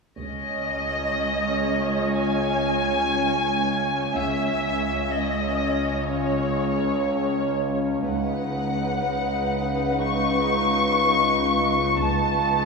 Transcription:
0.21 C#2 C#4 C#5 D#5
2.17 G#5
4.14 C#2 C#4 C#5 E5
5.14 D#5
6.10 C#5
8.07 C#2 D#4 B4 F#5
10.04 C#6
12.00 C#2 D#4 B4 A5

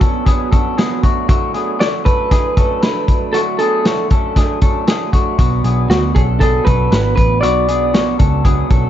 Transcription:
0.00 F#3 B3 C#4 D4 A4, kick, closed hi-hat
0.26 B2 F#3 B3 D4 G#4, kick, closed hi-hat
0.52 F#3 B3 C#4 D4 A4, kick, closed hi-hat
0.77 B2 F#3 B3 D4 G#4, snare, closed hi-hat
1.03 F#3 A3 B3 D4 F#4, kick, closed hi-hat
1.29 D3 F#3 A3 D4 F#4, kick, closed hi-hat
1.54 F#3 A3 B3 D4 G#4, closed hi-hat
1.79 D3 F#3 A3 D4 F#4 D5, snare, closed hi-hat
2.05 F#3 A3 C#4 D4 A4 B4, kick, closed hi-hat
2.31 D3 F#3 A3 D4 G#4, kick, snare, closed hi-hat
2.57 F#3 A3 C#4 D4 A4, kick, closed hi-hat
2.82 D3 F#3 A3 D4 B4, snare, closed hi-hat
3.08 F#3 A3 D4, kick, closed hi-hat
3.33 D3 F#3 A3 D4 F#4 A4, closed hi-hat
3.59 F#3 A3 B3 D4 G#4 A4, closed hi-hat
3.85 D3 F#3 A3 D4 F#4, snare, closed hi-hat
4.10 F#3 A3 C#4 D4 A4, kick, closed hi-hat
4.36 D3 F#3 A3 D4 G#4, kick, snare, closed hi-hat
4.61 F#3 A3 C#4 D4 A4, kick, closed hi-hat
4.87 D3 F#3 A3 D4 G#4, snare, closed hi-hat
5.13 F#3 A3 D4 F#4, kick, closed hi-hat
5.39 B1 B2 F#3 B3 D4 F#4, kick, closed hi-hat
5.64 B1 F#3 B3 D4 G#4, closed hi-hat
5.90 D2 B2 F#3 B3 D4 F#4, snare, closed hi-hat
6.15 B1 F#3 B3 C#4 D4 G#4 A4, kick, closed hi-hat
6.40 B2 F#3 B3 D4 G#4 A4, kick, closed hi-hat
6.65 B1 F#3 B3 C#4 D4 A4 B4, kick, closed hi-hat
6.91 G#1 B2 F#3 B3 D4 B4, snare, closed hi-hat
7.16 A1 F#3 B3 D4 B4, kick, closed hi-hat
7.41 B1 B2 F#3 B3 D4 F#4 D5, closed hi-hat
7.68 F#3 B3 D4 G#4, closed hi-hat
7.93 B2 F#3 B3 D4 F#4, snare, closed hi-hat
8.18 C#2 F#3 B3 C#4 D4 A4, kick, closed hi-hat
8.44 B2 F#3 B3 D4 G#4, kick, closed hi-hat
8.69 B1 F#3 B3 C#4 D4 A4, kick, closed hi-hat

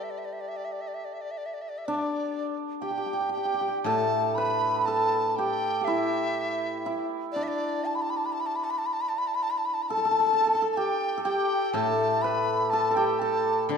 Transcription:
Already playing: G3 G4 A4 B4
0.03 E5
0.10 D5
0.18 E5
0.25 D5
0.33 E5
0.40 D5
0.48 E5
0.56 D5
0.65 E5
0.72 D5
0.81 E5
0.88 D5
0.94 E5
1.05 D5
1.13 E5
1.21 D5
1.31 E5
1.38 D5
1.46 E5
1.54 D5
1.61 E5
1.69 D5
1.78 E5
1.86 D4 D5
2.81 G4 G5
2.90 G4
2.98 G4
3.06 G4
3.13 G4
3.20 G4
3.29 G4 G5
3.37 G4
3.45 G4
3.54 G4
3.61 G4
3.68 G4
3.83 A2 A4 A5
4.35 B4 B5
4.86 A4 A5
5.29 A5
5.36 G4 G5
5.81 G4 E5
5.87 E4
6.86 E4
7.32 D4 D5
7.43 E5
7.48 D5
7.85 A5
7.95 B5
8.02 A5
8.10 B5
8.17 A5
8.25 B5
8.33 A5
8.40 B5
8.46 A5
8.56 B5
8.64 A5
8.70 B5
8.78 A5
8.86 B5
8.93 A5
9.01 B5
9.09 A5
9.18 B5
9.27 A5
9.35 B5
9.42 A5
9.50 B5
9.58 A5
9.65 B5
9.74 A5
9.82 B5
9.88 A4 A5
9.97 A4
10.05 A4
10.11 A4
10.19 A4
10.26 A4
10.33 A4
10.41 A4
10.47 A4
10.55 A4
10.62 A4
10.72 A5
10.77 G4 G5
11.18 A4
11.24 G4 G5
11.73 A2 A4 A5
12.22 B4 B5
12.70 A4 A5
12.91 A4 A5
12.95 G4 G5
13.19 A4 A5
13.69 D3 D4 D5

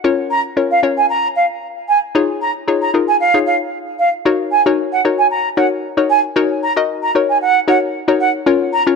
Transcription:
0.04 C#4 F4 A#4 C#5
0.31 A#5
0.57 C#4 F4 A#4 C#5
0.71 F5
0.83 C#4 F4 A#4 C#5
0.97 G#5
1.09 A#5
1.36 F5
1.88 G#5
2.15 D#4 F4 G#4 C#5
2.41 A#5
2.68 D#4 F4 G#4 C#5
2.82 A#5
2.94 D#4 F4 G#4 A#4
3.08 G#5
3.20 F5
3.34 D#4 F4 G#4 C#5
3.46 F5
3.99 F5
4.25 D#4 F#4 A#4 C#5
4.51 G#5
4.66 D#4 F#4 A#4 C#5
4.92 F#5
5.05 D#4 F#4 A#4 C#5
5.18 G#5
5.31 A#5
5.57 D#4 F#4 A#4 C#5 F#5
5.97 D#4 F#4 A#4 C#5
6.10 G#5
6.36 D#4 F#4 A#4 C#5
6.63 A#5
6.76 D#4 F#4 A#4 D#5
7.03 A#5
7.15 D#4 F#4 A#4 C#5
7.29 G#5
7.41 F#5
7.68 D#4 F#4 A#4 C#5 F#5
8.08 D#4 F#4 A#4 C#5
8.20 F#5
8.46 C#4 F4 A#4 C#5
8.73 A#5
8.87 C#4 F4 A#4 C#5

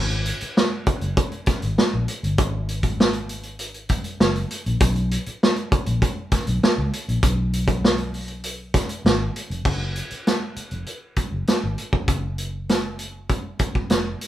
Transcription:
Already playing: G#1
0.10 closed hi-hat
0.25 closed hi-hat
0.41 muted fingered electric bass stroke, closed hi-hat
0.57 snare
0.86 muted fingered electric bass stroke, kick, closed hi-hat
1.01 F#1, closed hi-hat
1.17 kick, closed hi-hat
1.32 closed hi-hat
1.46 muted fingered electric bass stroke, kick, snare, closed hi-hat
1.62 G#1, closed hi-hat
1.78 muted fingered electric bass stroke, snare
1.94 A#1
2.08 closed hi-hat
2.23 G1, closed hi-hat
2.38 G#1, kick, closed hi-hat
2.69 closed hi-hat
2.83 kick, closed hi-hat
3.00 snare
3.13 closed hi-hat
3.29 closed hi-hat
3.43 closed hi-hat
3.59 closed hi-hat
3.74 closed hi-hat
3.89 kick, closed hi-hat
4.04 closed hi-hat
4.20 F#1, snare
4.36 closed hi-hat
4.51 closed hi-hat
4.66 A#1, closed hi-hat
4.80 B1, kick, closed hi-hat
4.96 closed hi-hat
5.11 closed hi-hat
5.26 muted fingered electric bass stroke, closed hi-hat
5.43 snare
5.56 closed hi-hat
5.72 muted fingered electric bass stroke, kick, closed hi-hat
5.86 A#1, closed hi-hat
6.02 kick, closed hi-hat
6.31 muted fingered electric bass stroke, kick, snare, closed hi-hat
6.47 B1, closed hi-hat
6.63 snare
6.78 C#2
6.93 closed hi-hat
7.09 A#1, closed hi-hat
7.23 B1, kick, closed hi-hat
7.53 closed hi-hat
7.68 kick, closed hi-hat
7.85 snare
7.98 closed hi-hat
8.14 open hi-hat
8.28 closed hi-hat
8.44 closed hi-hat
8.74 kick, snare, closed hi-hat
8.89 closed hi-hat
9.05 G#1, snare
9.36 closed hi-hat
9.50 F1, closed hi-hat
9.65 F#1, kick, crash
9.96 closed hi-hat
10.10 muted fingered electric bass stroke, closed hi-hat
10.27 snare, closed hi-hat
10.56 muted fingered electric bass stroke, closed hi-hat
10.71 F1, closed hi-hat
10.86 closed hi-hat
11.16 muted fingered electric bass stroke, kick, closed hi-hat
11.32 F#1
11.47 snare, closed hi-hat
11.63 G#1
11.78 closed hi-hat
11.93 F1, kick
12.08 F#1, kick, closed hi-hat
12.38 closed hi-hat
12.69 snare, closed hi-hat
12.99 closed hi-hat
13.29 kick, closed hi-hat
13.59 kick, closed hi-hat
13.75 kick
13.90 F1, snare, closed hi-hat
14.21 closed hi-hat

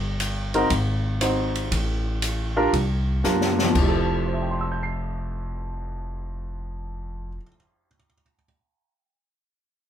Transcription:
Already playing: G1
0.20 hi-hat pedal, ride
0.54 C4 D#4 F#4 A#4, ride
0.70 G#1, kick, ride
1.21 C4 D#4 F#4 C5, cross-stick, hi-hat pedal, ride
1.55 ride
1.71 A1, kick, ride
2.22 hi-hat pedal, ride
2.56 D4 F4 G4 A#4
2.73 C2, kick, ride
3.24 F#2 D4 F4 G4 A#4, snare, hi-hat pedal
3.41 snare
3.59 snare
3.63 F2
3.69 F3
3.75 F1 E4, kick, crash
3.81 G4
3.88 A4
4.26 C5
4.33 E5
4.42 G5
4.51 C6
4.61 E6
4.72 G6
4.83 C7

